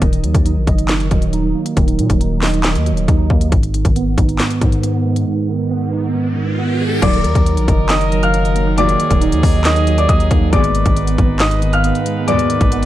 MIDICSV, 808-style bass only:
0, 0, Header, 1, 2, 480
1, 0, Start_track
1, 0, Key_signature, -6, "minor"
1, 0, Tempo, 437956
1, 18, Time_signature, 4, 2, 24, 8
1, 14089, End_track
2, 0, Start_track
2, 0, Title_t, "808-style bass"
2, 0, Program_c, 0, 38
2, 18, Note_on_c, 0, 27, 109
2, 256, Note_on_c, 0, 39, 104
2, 272, Note_off_c, 0, 27, 0
2, 371, Note_off_c, 0, 39, 0
2, 378, Note_on_c, 0, 39, 108
2, 618, Note_on_c, 0, 34, 101
2, 634, Note_off_c, 0, 39, 0
2, 732, Note_off_c, 0, 34, 0
2, 737, Note_on_c, 0, 30, 106
2, 1198, Note_off_c, 0, 30, 0
2, 1218, Note_on_c, 0, 27, 103
2, 1679, Note_off_c, 0, 27, 0
2, 1937, Note_on_c, 0, 27, 106
2, 2177, Note_on_c, 0, 46, 103
2, 2193, Note_off_c, 0, 27, 0
2, 2291, Note_off_c, 0, 46, 0
2, 2298, Note_on_c, 0, 27, 107
2, 3017, Note_on_c, 0, 39, 103
2, 3034, Note_off_c, 0, 27, 0
2, 3197, Note_on_c, 0, 27, 98
2, 3213, Note_off_c, 0, 39, 0
2, 3368, Note_off_c, 0, 27, 0
2, 3377, Note_on_c, 0, 39, 106
2, 3608, Note_off_c, 0, 39, 0
2, 3617, Note_on_c, 0, 39, 106
2, 3848, Note_off_c, 0, 39, 0
2, 3857, Note_on_c, 0, 32, 115
2, 4203, Note_off_c, 0, 32, 0
2, 4218, Note_on_c, 0, 32, 105
2, 4564, Note_off_c, 0, 32, 0
2, 4578, Note_on_c, 0, 32, 106
2, 4808, Note_off_c, 0, 32, 0
2, 5058, Note_on_c, 0, 44, 106
2, 5749, Note_off_c, 0, 44, 0
2, 7698, Note_on_c, 0, 27, 111
2, 7936, Note_on_c, 0, 39, 105
2, 7953, Note_off_c, 0, 27, 0
2, 8051, Note_off_c, 0, 39, 0
2, 8058, Note_on_c, 0, 39, 111
2, 8298, Note_on_c, 0, 34, 102
2, 8315, Note_off_c, 0, 39, 0
2, 8412, Note_off_c, 0, 34, 0
2, 8417, Note_on_c, 0, 30, 108
2, 9814, Note_off_c, 0, 30, 0
2, 9979, Note_on_c, 0, 27, 105
2, 10219, Note_on_c, 0, 39, 106
2, 10236, Note_off_c, 0, 27, 0
2, 10333, Note_off_c, 0, 39, 0
2, 10338, Note_on_c, 0, 39, 110
2, 11029, Note_off_c, 0, 39, 0
2, 11058, Note_on_c, 0, 39, 109
2, 11288, Note_off_c, 0, 39, 0
2, 11298, Note_on_c, 0, 39, 106
2, 11529, Note_off_c, 0, 39, 0
2, 11538, Note_on_c, 0, 32, 114
2, 11884, Note_off_c, 0, 32, 0
2, 11898, Note_on_c, 0, 32, 104
2, 12244, Note_off_c, 0, 32, 0
2, 12257, Note_on_c, 0, 32, 109
2, 13064, Note_off_c, 0, 32, 0
2, 13818, Note_on_c, 0, 32, 108
2, 14075, Note_off_c, 0, 32, 0
2, 14089, End_track
0, 0, End_of_file